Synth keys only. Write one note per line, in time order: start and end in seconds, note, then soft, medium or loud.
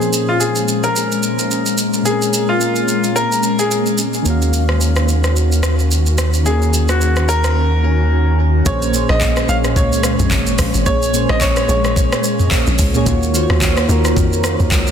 0.00 2.00 A#2 medium
0.00 2.01 A#3 medium
0.00 2.02 C#4 medium
0.00 2.03 G#4 medium
0.00 2.07 C5 medium
2.02 4.20 A#2 medium
2.02 4.21 A#3 medium
2.02 2.13 C4 soft
2.08 4.23 G#4 medium
2.08 4.24 A#4 medium
2.13 4.25 C#4 medium
4.22 6.40 D#3 medium
4.22 6.41 A#3 medium
4.22 6.42 C#4 medium
4.28 6.43 F#4 medium
4.28 6.44 F5 medium
6.43 7.79 D#3 medium
6.43 7.80 A#3 medium
6.43 7.81 C#4 medium
6.49 7.82 F#4 medium
6.49 7.83 A#4 medium
7.82 8.65 D#3 soft
7.82 8.65 A#3 soft
7.82 8.66 C#4 soft
7.82 8.67 F#4 soft
7.82 8.67 G#5 medium
8.65 8.88 A#2 medium
8.65 8.89 A#3 medium
8.65 8.89 C#4 medium
8.65 8.90 G#4 medium
8.65 8.90 C5 medium
8.92 9.39 A#2 medium
8.92 9.39 A#3 medium
8.92 9.40 C#4 medium
8.92 9.40 G#4 medium
8.92 9.41 C5 medium
9.48 10.37 A#2 medium
9.48 10.37 A#3 medium
9.48 10.38 C#4 medium
9.48 10.38 G#4 medium
9.48 10.39 C#5 medium
10.85 11.09 A#2 medium
10.85 11.09 A#3 medium
10.85 11.09 C#4 medium
10.85 11.10 G#4 medium
10.85 11.10 C#5 medium
11.13 11.59 A#2 medium
11.13 11.59 A#3 medium
11.13 11.60 C#4 medium
11.13 11.60 G#4 medium
11.13 11.61 C5 medium
11.68 12.57 A#2 medium
11.68 12.58 A#3 medium
11.68 12.58 C#4 medium
11.68 12.59 G#4 medium
11.68 12.59 C#5 medium
12.94 13.03 A#2 medium
12.94 13.04 A#3 medium
12.94 13.04 C#4 medium
12.94 13.05 G#4 medium
12.94 13.05 C#5 loud
13.05 13.29 D#3 medium
13.05 13.29 A#3 medium
13.05 13.30 F4 medium
13.05 13.30 F#4 medium
13.05 13.31 C#5 loud
13.33 13.79 D#3 medium
13.33 13.80 A#3 medium
13.33 13.80 F4 medium
13.33 13.81 F#4 medium
13.33 13.43 C5 medium
13.43 13.84 C#5 loud
13.88 14.77 D#3 loud
13.88 14.78 A#3 medium
13.88 14.78 F4 medium
13.88 14.79 F#4 medium
13.88 14.79 A#4 loud